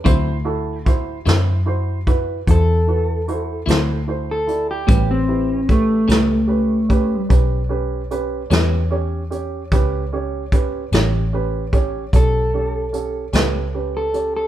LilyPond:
<<
  \new Staff \with { instrumentName = "Clean electric guitar" } { \time 12/8 \key a \mixolydian \tempo 4. = 50 a'4 r2 a'2~ a'16 a'8 g'16~ | g'16 c'8. a2 r2. | r2. a'2~ a'16 a'8 a'16 | }
  \new Staff \with { instrumentName = "Upright piano" } { \time 12/8 \key a \mixolydian <e' fis' c''>8 <e' fis' a'>8 <e' fis' c''>8 <e' fis' c''>8 <e' fis' c''>8 <e' fis' b'>8 <e' fis' c''>8 <e' fis' b'>8 <e' fis' c''>8 <e' fis' c''>8 <e' fis' c''>8 <e' fis' d''>8 | <cis' g' b'>8 <e' g' b'>8 <cis' g' b'>8 <cis' g' b'>8 <cis' g' b'>8 <cis' g' b'>8 <cis' g' b'>8 <cis' g' b'>8 <cis' g' b'>8 <cis' g' b'>8 <cis' g' cis''>8 <cis' g' cis''>8 | <cis' g' b'>8 <cis' g' cis''>8 <cis' g' b'>8 <cis' g' cis''>8 <cis' g' b'>8 <cis' g' cis''>8 <cis' g' cis''>8 <cis' g' cis''>8 <cis' g' a'>8 <cis' g' b'>8 <cis' g' b'>8 <cis' g' cis''>8 | }
  \new Staff \with { instrumentName = "Clean electric guitar" } { \time 12/8 \key a \mixolydian <d fis c' e'>8 r4 <d fis c' e'>8 r2 r8 <d fis c' e'>8 r4 | <a, g b cis'>8 r4 <a, g b cis'>8 r2 r8 <a, g b cis'>8 r4 | r4. <a, g b cis'>8 r2 r8 <a, g b cis'>8 r4 | }
  \new Staff \with { instrumentName = "Fingered electric bass" } { \clef bass \time 12/8 \key a \mixolydian d,4. fis,4. e,4. d,4. | a,,4. cis,4. b,,4. e,4. | cis,4. a,,4. b,,4. cis,4. | }
  \new DrumStaff \with { instrumentName = "Drums" } \drummode { \time 12/8 <hh bd>4 <hh bd>8 <hh sn>4 <hh bd>8 <hh bd>4 hh8 <hh sn>4 hh8 | <hh bd>4 <hh bd>8 <hh sn>4 <hh bd>8 <hh bd>4 hh8 <hh sn>4 hh8 | <hh bd>4 <hh bd>8 <hh sn>4 <hh bd>8 <hh bd>4 hh8 <hh sn>4 hh8 | }
>>